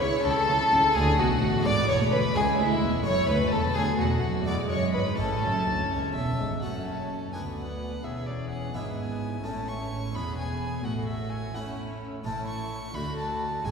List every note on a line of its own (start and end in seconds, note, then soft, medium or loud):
0.00 0.10 C#2 medium
0.00 0.10 C#3 medium
0.00 0.23 C#3 medium
0.00 0.89 A3 medium
0.00 0.89 C#4 medium
0.00 0.90 E4 medium
0.00 0.12 E4 medium
0.00 0.25 C#5 loud
0.00 0.10 C#5 loud
0.00 0.24 C#6 loud
0.14 0.25 C#4 medium
0.25 0.33 C#2 medium
0.25 0.33 C#3 medium
0.25 0.46 C#3 medium
0.25 0.37 E4 medium
0.25 0.93 A4 loud
0.25 0.96 A4 loud
0.25 0.95 A5 loud
0.37 0.48 C#4 medium
0.48 0.57 C#2 medium
0.48 0.56 C#3 medium
0.48 0.69 C#3 medium
0.48 0.59 E4 medium
0.60 0.71 C#4 medium
0.72 0.81 C#2 medium
0.72 0.93 C#3 medium
0.72 0.80 C#3 medium
0.72 0.84 E4 medium
0.84 0.95 C#4 medium
0.90 1.15 A3 medium
0.90 1.61 F#4 medium
0.90 1.18 G#5 loud
0.95 1.16 D2 loud
0.95 1.16 D3 medium
0.95 1.17 D3 loud
0.95 1.61 A3 loud
0.95 1.20 G#4 loud
0.95 1.18 G#4 loud
1.18 1.41 B1 medium
1.18 1.39 B2 medium
1.18 1.42 B2 medium
1.18 1.65 F#4 loud
1.18 1.66 F#4 loud
1.18 1.65 F#5 loud
1.41 1.64 A1 medium
1.41 1.62 A2 medium
1.41 1.65 A2 medium
1.60 2.30 G#3 medium
1.60 2.31 B3 medium
1.60 2.32 F#4 medium
1.64 1.88 G#1 medium
1.64 1.86 G#2 medium
1.64 1.87 G#2 loud
1.64 2.00 B3 loud
1.64 1.88 D5 loud
1.64 1.73 D5 loud
1.64 1.88 D6 loud
1.88 2.11 E1 medium
1.88 2.11 E2 medium
1.88 2.09 E2 medium
1.88 1.96 C#5 loud
1.88 2.14 C#5 loud
1.88 2.12 C#6 loud
2.00 2.35 A3 medium
2.11 2.19 D2 medium
2.11 2.20 D2 medium
2.11 2.33 D2 medium
2.11 2.19 B4 loud
2.11 2.37 B4 loud
2.11 2.34 B5 loud
2.32 2.58 C#2 loud
2.32 2.56 G#3 medium
2.32 3.05 G#3 medium
2.32 3.03 C#4 medium
2.32 3.03 E4 medium
2.32 2.57 G#4 loud
2.32 2.44 G#4 loud
2.32 2.58 G#5 loud
2.37 2.57 C#2 medium
2.58 2.82 D2 medium
2.58 2.80 D2 medium
2.58 3.04 E4 medium
2.58 3.05 E4 loud
2.58 3.05 E5 loud
2.81 3.05 E1 medium
2.81 3.05 E2 medium
2.81 3.04 E2 medium
3.02 3.28 F#1 medium
3.02 3.28 F#2 medium
3.02 3.26 A3 medium
3.02 3.75 A3 medium
3.02 3.27 C#4 medium
3.02 3.73 E4 medium
3.02 3.28 C#5 loud
3.02 3.28 C#6 loud
3.06 3.27 F#2 medium
3.06 3.30 C#5 loud
3.27 3.51 D2 medium
3.27 3.52 D2 medium
3.27 3.50 D2 medium
3.27 3.53 B4 loud
3.27 3.52 B4 medium
3.27 3.51 B5 loud
3.52 3.75 E1 medium
3.52 3.75 E2 medium
3.52 3.73 E2 medium
3.52 3.76 A4 loud
3.52 3.75 A5 loud
3.72 3.99 D2 medium
3.72 3.97 A3 medium
3.72 4.46 A3 medium
3.72 4.44 B3 medium
3.72 4.45 F#4 medium
3.72 3.98 G#4 loud
3.72 3.82 G#4 loud
3.72 3.99 G#5 loud
3.76 3.97 D2 medium
3.98 4.22 E1 medium
3.98 4.22 E2 medium
3.98 4.21 E2 medium
3.98 4.46 F#4 medium
3.98 4.46 F#5 loud
4.23 4.46 F#1 medium
4.23 4.47 F#2 medium
4.23 4.45 F#2 medium
4.44 4.71 E1 medium
4.44 4.71 E2 medium
4.44 4.69 G#3 medium
4.44 5.19 G#3 medium
4.44 4.70 B3 medium
4.44 5.17 E4 medium
4.44 4.71 D5 loud
4.44 4.55 D5 loud
4.44 4.55 D6 loud
4.49 4.69 E2 medium
4.70 4.94 F#1 medium
4.70 4.94 F#2 medium
4.70 4.93 F#2 medium
4.70 4.94 C#5 medium
4.70 4.79 C#5 medium
4.70 4.94 C#6 loud
4.94 5.02 G#1 medium
4.94 5.03 G#2 medium
4.94 5.17 G#2 medium
4.94 5.02 B4 medium
4.94 5.19 B4 medium
4.94 5.18 B5 loud
5.15 5.42 A1 medium
5.15 5.42 A2 medium
5.15 6.57 A3 medium
5.15 6.58 C#4 medium
5.15 6.40 C#4 medium
5.15 6.58 E4 medium
5.15 6.38 A5 loud
5.20 5.41 A2 medium
5.20 5.90 A4 medium
5.20 6.37 A4 medium
5.42 5.67 F#1 medium
5.42 5.66 F#2 medium
5.42 5.65 F#2 medium
5.66 5.91 D2 medium
5.66 5.88 D2 medium
5.90 6.14 C#2 medium
5.90 6.13 C#2 medium
5.90 6.14 C#5 medium
6.14 6.38 E1 medium
6.14 6.38 E2 medium
6.14 6.37 E2 medium
6.14 6.61 E5 medium
6.38 6.47 G#1 medium
6.38 6.46 G#2 medium
6.38 6.60 G#2 medium
6.62 7.29 F#1 medium
6.62 7.29 F#2 medium
6.62 7.29 F#2 soft
6.62 7.29 A3 soft
6.62 7.30 C#4 soft
6.62 7.30 F#4 soft
6.62 7.30 A4 soft
6.62 7.30 C#5 soft
6.62 6.86 F#5 medium
6.85 7.32 A5 medium
7.32 8.02 D2 soft
7.32 8.00 D2 soft
7.32 8.03 D2 soft
7.32 8.02 B3 soft
7.32 8.00 B3 soft
7.32 8.00 D4 soft
7.32 8.01 F#4 soft
7.32 8.04 B4 soft
7.32 8.04 D5 soft
7.32 7.40 G#5 medium
7.58 8.05 F#5 medium
8.03 8.72 E1 medium
8.03 8.72 E2 medium
8.03 8.70 E2 soft
8.03 8.74 C#4 soft
8.03 8.72 G#4 medium
8.03 9.42 B4 medium
8.03 8.27 E5 medium
8.26 8.49 D5 medium
8.50 8.76 F#5 medium
8.73 9.44 G#1 medium
8.73 9.44 G#2 medium
8.73 9.40 G#2 soft
8.73 9.44 B3 medium
8.73 9.25 B3 soft
8.73 9.25 D4 soft
8.73 9.25 E4 soft
8.73 9.41 E4 soft
8.73 8.97 E5 medium
8.97 9.45 G#5 medium
9.42 10.12 A1 medium
9.42 10.12 A2 medium
9.42 10.10 A2 soft
9.42 10.10 A3 soft
9.42 10.10 C#4 soft
9.42 10.14 C#4 soft
9.42 10.12 E4 soft
9.42 10.11 E4 soft
9.42 10.81 C#5 medium
9.42 9.69 A5 medium
9.67 10.16 C#6 medium
10.13 10.84 E1 medium
10.13 10.84 E2 medium
10.13 10.80 E2 soft
10.13 10.84 B3 medium
10.13 10.80 B3 soft
10.13 10.80 D4 soft
10.13 10.81 E4 soft
10.13 10.84 G#4 medium
10.13 10.37 B5 medium
10.38 10.86 G#5 medium
10.83 11.52 A1 medium
10.83 11.52 A2 medium
10.83 11.50 A2 soft
10.83 11.52 A3 medium
10.83 11.54 F#4 medium
10.83 11.52 C#5 medium
10.83 11.07 F#5 medium
11.07 11.31 E5 medium
11.30 11.56 G#5 medium
11.53 12.22 A2 medium
11.53 12.22 A3 medium
11.53 12.05 A3 soft
11.53 12.24 C#4 medium
11.53 12.05 C#4 soft
11.53 12.23 E4 medium
11.53 12.06 E4 soft
11.53 12.24 A4 medium
11.53 11.78 F#5 medium
12.24 12.90 A1 medium
12.24 12.90 A2 medium
12.24 12.90 A2 soft
12.24 12.90 A3 medium
12.24 12.90 A3 soft
12.24 12.90 C#4 soft
12.24 12.90 E4 medium
12.24 12.91 E4 soft
12.24 12.90 C#5 medium
12.24 12.46 A5 medium
12.47 12.95 C#6 medium
12.93 13.60 D2 medium
12.93 13.60 D3 medium
12.93 13.60 D3 soft
12.93 13.63 A3 medium
12.93 13.60 A3 soft
12.93 13.61 D4 soft
12.93 13.62 F#4 medium
12.93 13.61 F#4 soft
12.93 13.62 D5 medium
12.93 13.17 B5 medium
13.17 13.66 A5 medium
13.63 13.71 G#1 medium
13.63 13.71 G#2 medium
13.63 13.71 G#2 soft
13.63 13.71 G#3 medium
13.63 13.71 G#3 soft
13.63 13.71 D4 soft
13.63 13.71 F#4 medium
13.63 13.71 F#4 soft
13.63 13.71 D5 medium
13.63 13.71 G#5 medium